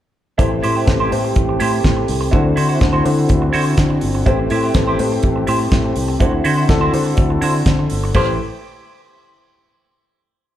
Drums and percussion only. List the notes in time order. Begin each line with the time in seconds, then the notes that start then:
0.39 kick, closed hi-hat
0.64 open hi-hat
0.87 kick, snare, closed hi-hat
1.12 open hi-hat
1.36 kick, closed hi-hat
1.60 open hi-hat
1.84 kick, snare, closed hi-hat
2.08 open hi-hat
2.33 kick, closed hi-hat
2.57 open hi-hat
2.81 kick, snare, closed hi-hat
3.05 open hi-hat
3.29 kick, closed hi-hat
3.54 open hi-hat
3.77 kick, snare, closed hi-hat
4.01 open hi-hat
4.26 kick, closed hi-hat
4.50 open hi-hat
4.74 kick, snare, closed hi-hat
4.99 open hi-hat
5.23 kick, closed hi-hat
5.47 open hi-hat
5.72 kick, snare, closed hi-hat
5.96 open hi-hat
6.20 kick, closed hi-hat
6.45 open hi-hat
6.69 kick, snare, closed hi-hat
6.94 open hi-hat
7.17 kick, closed hi-hat
7.42 open hi-hat
7.66 kick, snare, closed hi-hat
7.90 open hi-hat
8.14 kick, crash